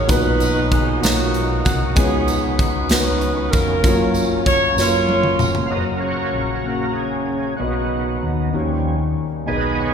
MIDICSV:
0, 0, Header, 1, 7, 480
1, 0, Start_track
1, 0, Key_signature, 6, "major"
1, 0, Tempo, 625652
1, 71, Time_signature, 6, 3, 24, 8
1, 7624, End_track
2, 0, Start_track
2, 0, Title_t, "Saxophone section"
2, 0, Program_c, 0, 65
2, 74, Note_on_c, 0, 71, 91
2, 82, Note_on_c, 0, 66, 72
2, 87, Note_on_c, 0, 63, 69
2, 551, Note_off_c, 0, 71, 0
2, 552, Note_on_c, 0, 68, 85
2, 763, Note_off_c, 0, 66, 0
2, 766, Note_off_c, 0, 63, 0
2, 783, Note_on_c, 0, 66, 86
2, 784, Note_on_c, 0, 63, 64
2, 790, Note_off_c, 0, 68, 0
2, 793, Note_on_c, 0, 58, 61
2, 1136, Note_off_c, 0, 66, 0
2, 1266, Note_on_c, 0, 66, 80
2, 1473, Note_off_c, 0, 63, 0
2, 1478, Note_off_c, 0, 58, 0
2, 1489, Note_off_c, 0, 66, 0
2, 1499, Note_on_c, 0, 63, 63
2, 1499, Note_on_c, 0, 68, 89
2, 1505, Note_on_c, 0, 59, 67
2, 1775, Note_off_c, 0, 68, 0
2, 1975, Note_off_c, 0, 63, 0
2, 1977, Note_on_c, 0, 71, 98
2, 1978, Note_on_c, 0, 66, 70
2, 1984, Note_on_c, 0, 63, 69
2, 2193, Note_off_c, 0, 59, 0
2, 2669, Note_off_c, 0, 66, 0
2, 2669, Note_off_c, 0, 71, 0
2, 2673, Note_off_c, 0, 63, 0
2, 2692, Note_on_c, 0, 70, 83
2, 2703, Note_on_c, 0, 61, 57
2, 2703, Note_on_c, 0, 65, 65
2, 3177, Note_off_c, 0, 70, 0
2, 3392, Note_off_c, 0, 61, 0
2, 3392, Note_off_c, 0, 65, 0
2, 3427, Note_on_c, 0, 73, 97
2, 3648, Note_off_c, 0, 73, 0
2, 3677, Note_on_c, 0, 70, 76
2, 3681, Note_on_c, 0, 73, 94
2, 3685, Note_on_c, 0, 65, 74
2, 4182, Note_off_c, 0, 73, 0
2, 4360, Note_off_c, 0, 70, 0
2, 4364, Note_off_c, 0, 65, 0
2, 7624, End_track
3, 0, Start_track
3, 0, Title_t, "Upright piano"
3, 0, Program_c, 1, 0
3, 0, Control_c, 1, 64, 127
3, 0, Note_on_c, 1, 56, 69
3, 0, Note_on_c, 1, 63, 56
3, 0, Note_on_c, 1, 66, 59
3, 0, Note_on_c, 1, 70, 83
3, 57, Note_on_c, 1, 46, 78
3, 62, Note_off_c, 1, 63, 0
3, 62, Note_on_c, 1, 63, 67
3, 69, Note_on_c, 1, 47, 61
3, 76, Note_off_c, 1, 66, 0
3, 76, Note_on_c, 1, 66, 66
3, 80, Note_on_c, 1, 71, 86
3, 81, Note_off_c, 1, 56, 0
3, 81, Control_c, 1, 64, 0
3, 84, Note_off_c, 1, 70, 0
3, 232, Control_c, 1, 64, 127
3, 605, Note_off_c, 1, 46, 0
3, 608, Note_off_c, 1, 63, 0
3, 615, Note_off_c, 1, 66, 0
3, 617, Note_off_c, 1, 71, 0
3, 757, Note_off_c, 1, 47, 0
3, 775, Note_on_c, 1, 58, 63
3, 783, Note_on_c, 1, 63, 59
3, 790, Note_on_c, 1, 66, 55
3, 801, Note_on_c, 1, 73, 72
3, 1323, Note_off_c, 1, 58, 0
3, 1328, Note_off_c, 1, 63, 0
3, 1331, Note_off_c, 1, 66, 0
3, 1336, Note_off_c, 1, 73, 0
3, 1492, Note_on_c, 1, 59, 76
3, 1506, Note_on_c, 1, 63, 71
3, 1508, Note_on_c, 1, 49, 60
3, 1510, Note_on_c, 1, 65, 54
3, 1517, Control_c, 1, 64, 0
3, 1523, Note_on_c, 1, 73, 85
3, 1558, Note_off_c, 1, 65, 0
3, 1565, Note_on_c, 1, 66, 73
3, 1634, Control_c, 1, 64, 127
3, 2041, Note_off_c, 1, 59, 0
3, 2048, Note_off_c, 1, 63, 0
3, 2057, Note_off_c, 1, 73, 0
3, 2078, Note_off_c, 1, 66, 0
3, 2194, Note_off_c, 1, 49, 0
3, 2214, Note_on_c, 1, 59, 64
3, 2220, Note_on_c, 1, 63, 60
3, 2231, Note_on_c, 1, 66, 60
3, 2239, Note_on_c, 1, 71, 59
3, 2281, Note_off_c, 1, 71, 0
3, 2290, Note_on_c, 1, 73, 70
3, 2762, Note_off_c, 1, 59, 0
3, 2765, Note_off_c, 1, 63, 0
3, 2770, Note_off_c, 1, 66, 0
3, 2800, Note_off_c, 1, 73, 0
3, 2936, Note_on_c, 1, 57, 56
3, 2943, Note_on_c, 1, 65, 69
3, 2953, Control_c, 1, 64, 0
3, 2953, Note_on_c, 1, 54, 69
3, 2966, Note_on_c, 1, 73, 87
3, 2987, Note_on_c, 1, 58, 75
3, 2989, Note_off_c, 1, 57, 0
3, 3107, Control_c, 1, 64, 127
3, 3486, Note_off_c, 1, 65, 0
3, 3491, Note_off_c, 1, 54, 0
3, 3498, Note_off_c, 1, 73, 0
3, 3508, Note_off_c, 1, 58, 0
3, 3648, Note_on_c, 1, 58, 60
3, 3657, Note_on_c, 1, 65, 55
3, 3668, Note_on_c, 1, 54, 58
3, 3675, Note_on_c, 1, 71, 54
3, 3719, Note_off_c, 1, 71, 0
3, 3724, Note_on_c, 1, 73, 71
3, 4199, Note_off_c, 1, 58, 0
3, 4204, Note_off_c, 1, 65, 0
3, 4209, Note_off_c, 1, 54, 0
3, 4237, Note_off_c, 1, 73, 0
3, 4368, Note_on_c, 1, 58, 49
3, 4376, Note_on_c, 1, 61, 52
3, 4390, Note_on_c, 1, 66, 47
3, 4393, Control_c, 1, 64, 0
3, 4398, Note_on_c, 1, 72, 47
3, 4441, Note_off_c, 1, 72, 0
3, 4448, Note_on_c, 1, 73, 55
3, 4513, Control_c, 1, 64, 127
3, 4920, Note_off_c, 1, 58, 0
3, 4924, Note_off_c, 1, 61, 0
3, 4931, Note_off_c, 1, 66, 0
3, 4960, Note_off_c, 1, 73, 0
3, 5089, Note_on_c, 1, 58, 49
3, 5097, Note_on_c, 1, 61, 44
3, 5110, Note_on_c, 1, 66, 45
3, 5124, Note_on_c, 1, 73, 50
3, 5642, Note_off_c, 1, 58, 0
3, 5646, Note_off_c, 1, 61, 0
3, 5653, Note_off_c, 1, 66, 0
3, 5659, Note_off_c, 1, 73, 0
3, 5815, Note_on_c, 1, 59, 56
3, 5822, Note_on_c, 1, 63, 50
3, 5826, Note_on_c, 1, 47, 45
3, 5833, Note_on_c, 1, 66, 53
3, 5838, Control_c, 1, 64, 0
3, 5843, Note_on_c, 1, 75, 62
3, 5953, Control_c, 1, 64, 127
3, 6367, Note_off_c, 1, 59, 0
3, 6371, Note_off_c, 1, 63, 0
3, 6376, Note_off_c, 1, 66, 0
3, 6381, Note_off_c, 1, 75, 0
3, 6519, Note_off_c, 1, 47, 0
3, 6538, Note_on_c, 1, 58, 60
3, 6549, Note_on_c, 1, 63, 51
3, 6552, Note_on_c, 1, 51, 56
3, 6559, Note_on_c, 1, 67, 50
3, 6560, Control_c, 1, 64, 0
3, 6566, Note_on_c, 1, 73, 61
3, 6686, Control_c, 1, 64, 127
3, 7090, Note_off_c, 1, 58, 0
3, 7096, Note_off_c, 1, 63, 0
3, 7101, Note_off_c, 1, 67, 0
3, 7104, Note_off_c, 1, 73, 0
3, 7244, Note_off_c, 1, 51, 0
3, 7256, Note_on_c, 1, 59, 56
3, 7264, Note_on_c, 1, 63, 54
3, 7268, Note_on_c, 1, 47, 49
3, 7275, Note_on_c, 1, 68, 51
3, 7283, Note_on_c, 1, 75, 63
3, 7285, Control_c, 1, 64, 0
3, 7426, Control_c, 1, 64, 127
3, 7624, Note_off_c, 1, 47, 0
3, 7624, Note_off_c, 1, 59, 0
3, 7624, Note_off_c, 1, 63, 0
3, 7624, Note_off_c, 1, 68, 0
3, 7624, Note_off_c, 1, 75, 0
3, 7624, End_track
4, 0, Start_track
4, 0, Title_t, "Tonewheel organ"
4, 0, Program_c, 2, 16
4, 58, Note_on_c, 2, 54, 57
4, 62, Note_on_c, 2, 66, 73
4, 65, Note_on_c, 2, 51, 63
4, 65, Note_on_c, 2, 63, 53
4, 1471, Note_off_c, 2, 54, 0
4, 1473, Note_off_c, 2, 66, 0
4, 1474, Note_off_c, 2, 51, 0
4, 1474, Note_off_c, 2, 63, 0
4, 1496, Note_on_c, 2, 51, 64
4, 1496, Note_on_c, 2, 54, 70
4, 1499, Note_on_c, 2, 61, 57
4, 1500, Note_on_c, 2, 59, 60
4, 2909, Note_off_c, 2, 51, 0
4, 2909, Note_off_c, 2, 54, 0
4, 2911, Note_off_c, 2, 61, 0
4, 2912, Note_off_c, 2, 59, 0
4, 2937, Note_on_c, 2, 65, 60
4, 2944, Note_on_c, 2, 58, 55
4, 2947, Note_on_c, 2, 61, 57
4, 2993, Note_off_c, 2, 65, 0
4, 2994, Note_on_c, 2, 54, 72
4, 4341, Note_on_c, 2, 77, 75
4, 4355, Note_off_c, 2, 58, 0
4, 4357, Note_off_c, 2, 61, 0
4, 4366, Note_off_c, 2, 54, 0
4, 4373, Note_on_c, 2, 49, 38
4, 4375, Note_on_c, 2, 54, 33
4, 4376, Note_on_c, 2, 75, 72
4, 4382, Note_on_c, 2, 58, 43
4, 4385, Note_on_c, 2, 70, 49
4, 4386, Note_on_c, 2, 66, 53
4, 4389, Note_off_c, 2, 77, 0
4, 4486, Note_off_c, 2, 75, 0
4, 4606, Note_on_c, 2, 73, 80
4, 4609, Note_off_c, 2, 70, 0
4, 4614, Note_off_c, 2, 66, 0
4, 4619, Note_on_c, 2, 70, 50
4, 4623, Note_on_c, 2, 66, 47
4, 5069, Note_off_c, 2, 70, 0
4, 5079, Note_on_c, 2, 70, 60
4, 5111, Note_off_c, 2, 73, 0
4, 5315, Note_off_c, 2, 66, 0
4, 5319, Note_on_c, 2, 68, 66
4, 5340, Note_off_c, 2, 70, 0
4, 5346, Note_on_c, 2, 61, 44
4, 5783, Note_off_c, 2, 68, 0
4, 5791, Note_off_c, 2, 49, 0
4, 5793, Note_off_c, 2, 54, 0
4, 5796, Note_off_c, 2, 58, 0
4, 5797, Note_off_c, 2, 61, 0
4, 5806, Note_on_c, 2, 66, 52
4, 5818, Note_on_c, 2, 51, 39
4, 5828, Note_on_c, 2, 59, 43
4, 5830, Note_on_c, 2, 54, 35
4, 5832, Note_on_c, 2, 63, 40
4, 6328, Note_off_c, 2, 66, 0
4, 6515, Note_off_c, 2, 51, 0
4, 6520, Note_off_c, 2, 59, 0
4, 6521, Note_off_c, 2, 54, 0
4, 6522, Note_off_c, 2, 63, 0
4, 6547, Note_on_c, 2, 53, 38
4, 6550, Note_on_c, 2, 55, 36
4, 6561, Note_on_c, 2, 61, 43
4, 6869, Note_off_c, 2, 53, 0
4, 6871, Note_off_c, 2, 55, 0
4, 6877, Note_off_c, 2, 61, 0
4, 7261, Note_on_c, 2, 56, 36
4, 7268, Note_on_c, 2, 51, 41
4, 7270, Note_on_c, 2, 59, 45
4, 7271, Note_on_c, 2, 68, 54
4, 7274, Note_on_c, 2, 71, 58
4, 7274, Note_on_c, 2, 75, 83
4, 7489, Note_off_c, 2, 68, 0
4, 7498, Note_on_c, 2, 68, 52
4, 7499, Note_off_c, 2, 75, 0
4, 7506, Note_on_c, 2, 73, 70
4, 7624, Note_off_c, 2, 51, 0
4, 7624, Note_off_c, 2, 56, 0
4, 7624, Note_off_c, 2, 59, 0
4, 7624, Note_off_c, 2, 68, 0
4, 7624, Note_off_c, 2, 71, 0
4, 7624, Note_off_c, 2, 73, 0
4, 7624, End_track
5, 0, Start_track
5, 0, Title_t, "French horn section"
5, 0, Program_c, 3, 60
5, 4394, Note_on_c, 3, 58, 50
5, 4395, Note_on_c, 3, 54, 53
5, 4398, Note_on_c, 3, 61, 47
5, 4403, Note_on_c, 3, 66, 62
5, 5814, Note_off_c, 3, 54, 0
5, 5818, Note_off_c, 3, 58, 0
5, 5820, Note_off_c, 3, 61, 0
5, 5821, Note_off_c, 3, 66, 0
5, 5823, Note_on_c, 3, 54, 52
5, 5824, Note_on_c, 3, 59, 48
5, 5830, Note_on_c, 3, 66, 58
5, 5831, Note_on_c, 3, 63, 47
5, 6541, Note_off_c, 3, 54, 0
5, 6542, Note_off_c, 3, 59, 0
5, 6544, Note_off_c, 3, 66, 0
5, 6563, Note_on_c, 3, 61, 46
5, 6569, Note_on_c, 3, 58, 43
5, 6572, Note_on_c, 3, 55, 49
5, 7259, Note_on_c, 3, 51, 54
5, 7270, Note_on_c, 3, 56, 48
5, 7273, Note_off_c, 3, 61, 0
5, 7273, Note_on_c, 3, 47, 54
5, 7276, Note_off_c, 3, 58, 0
5, 7278, Note_off_c, 3, 55, 0
5, 7624, Note_off_c, 3, 47, 0
5, 7624, Note_off_c, 3, 51, 0
5, 7624, Note_off_c, 3, 56, 0
5, 7624, Note_off_c, 3, 63, 0
5, 7624, End_track
6, 0, Start_track
6, 0, Title_t, "Fingered electric bass"
6, 0, Program_c, 4, 33
6, 70, Note_on_c, 4, 35, 101
6, 757, Note_off_c, 4, 35, 0
6, 786, Note_on_c, 4, 35, 86
6, 1235, Note_off_c, 4, 35, 0
6, 1274, Note_on_c, 4, 36, 92
6, 1491, Note_off_c, 4, 36, 0
6, 1511, Note_on_c, 4, 37, 106
6, 2196, Note_off_c, 4, 37, 0
6, 2218, Note_on_c, 4, 37, 90
6, 2670, Note_off_c, 4, 37, 0
6, 2710, Note_on_c, 4, 29, 83
6, 2928, Note_off_c, 4, 29, 0
6, 2948, Note_on_c, 4, 30, 102
6, 3635, Note_off_c, 4, 30, 0
6, 3656, Note_on_c, 4, 30, 86
6, 4109, Note_off_c, 4, 30, 0
6, 4136, Note_on_c, 4, 29, 87
6, 4361, Note_off_c, 4, 29, 0
6, 4372, Note_on_c, 4, 30, 67
6, 4828, Note_off_c, 4, 30, 0
6, 4853, Note_on_c, 4, 34, 62
6, 5791, Note_off_c, 4, 34, 0
6, 5830, Note_on_c, 4, 35, 70
6, 6280, Note_off_c, 4, 35, 0
6, 6313, Note_on_c, 4, 39, 62
6, 6533, Note_off_c, 4, 39, 0
6, 6555, Note_on_c, 4, 39, 76
6, 7004, Note_off_c, 4, 39, 0
6, 7275, Note_on_c, 4, 35, 78
6, 7624, Note_off_c, 4, 35, 0
6, 7624, End_track
7, 0, Start_track
7, 0, Title_t, "Drums"
7, 67, Note_on_c, 9, 42, 79
7, 71, Note_on_c, 9, 36, 111
7, 77, Note_on_c, 9, 54, 46
7, 143, Note_off_c, 9, 42, 0
7, 147, Note_off_c, 9, 36, 0
7, 154, Note_off_c, 9, 54, 0
7, 310, Note_on_c, 9, 42, 49
7, 319, Note_on_c, 9, 54, 56
7, 386, Note_off_c, 9, 42, 0
7, 396, Note_off_c, 9, 54, 0
7, 550, Note_on_c, 9, 36, 93
7, 550, Note_on_c, 9, 42, 52
7, 626, Note_off_c, 9, 42, 0
7, 627, Note_off_c, 9, 36, 0
7, 793, Note_on_c, 9, 54, 94
7, 794, Note_on_c, 9, 42, 89
7, 805, Note_on_c, 9, 38, 112
7, 870, Note_off_c, 9, 42, 0
7, 870, Note_off_c, 9, 54, 0
7, 882, Note_off_c, 9, 38, 0
7, 1031, Note_on_c, 9, 42, 48
7, 1108, Note_off_c, 9, 42, 0
7, 1266, Note_on_c, 9, 54, 49
7, 1273, Note_on_c, 9, 36, 92
7, 1276, Note_on_c, 9, 42, 51
7, 1343, Note_off_c, 9, 54, 0
7, 1350, Note_off_c, 9, 36, 0
7, 1352, Note_off_c, 9, 42, 0
7, 1504, Note_on_c, 9, 42, 72
7, 1508, Note_on_c, 9, 36, 103
7, 1513, Note_on_c, 9, 54, 46
7, 1581, Note_off_c, 9, 42, 0
7, 1585, Note_off_c, 9, 36, 0
7, 1590, Note_off_c, 9, 54, 0
7, 1748, Note_on_c, 9, 42, 53
7, 1748, Note_on_c, 9, 54, 50
7, 1824, Note_off_c, 9, 42, 0
7, 1824, Note_off_c, 9, 54, 0
7, 1988, Note_on_c, 9, 36, 92
7, 1992, Note_on_c, 9, 42, 50
7, 2064, Note_off_c, 9, 36, 0
7, 2068, Note_off_c, 9, 42, 0
7, 2221, Note_on_c, 9, 42, 86
7, 2232, Note_on_c, 9, 38, 113
7, 2233, Note_on_c, 9, 54, 97
7, 2297, Note_off_c, 9, 42, 0
7, 2309, Note_off_c, 9, 38, 0
7, 2310, Note_off_c, 9, 54, 0
7, 2465, Note_on_c, 9, 42, 49
7, 2542, Note_off_c, 9, 42, 0
7, 2706, Note_on_c, 9, 54, 50
7, 2707, Note_on_c, 9, 42, 52
7, 2711, Note_on_c, 9, 36, 94
7, 2783, Note_off_c, 9, 54, 0
7, 2784, Note_off_c, 9, 42, 0
7, 2787, Note_off_c, 9, 36, 0
7, 2945, Note_on_c, 9, 36, 107
7, 2948, Note_on_c, 9, 42, 79
7, 2949, Note_on_c, 9, 54, 50
7, 3022, Note_off_c, 9, 36, 0
7, 3025, Note_off_c, 9, 42, 0
7, 3025, Note_off_c, 9, 54, 0
7, 3178, Note_on_c, 9, 54, 56
7, 3186, Note_on_c, 9, 42, 49
7, 3254, Note_off_c, 9, 54, 0
7, 3263, Note_off_c, 9, 42, 0
7, 3423, Note_on_c, 9, 36, 94
7, 3423, Note_on_c, 9, 42, 54
7, 3500, Note_off_c, 9, 36, 0
7, 3500, Note_off_c, 9, 42, 0
7, 3667, Note_on_c, 9, 54, 93
7, 3671, Note_on_c, 9, 38, 56
7, 3744, Note_off_c, 9, 54, 0
7, 3748, Note_off_c, 9, 38, 0
7, 3903, Note_on_c, 9, 48, 67
7, 3980, Note_off_c, 9, 48, 0
7, 4016, Note_on_c, 9, 47, 69
7, 4093, Note_off_c, 9, 47, 0
7, 4137, Note_on_c, 9, 45, 90
7, 4140, Note_on_c, 9, 54, 52
7, 4214, Note_off_c, 9, 45, 0
7, 4217, Note_off_c, 9, 54, 0
7, 4256, Note_on_c, 9, 43, 90
7, 4333, Note_off_c, 9, 43, 0
7, 7624, End_track
0, 0, End_of_file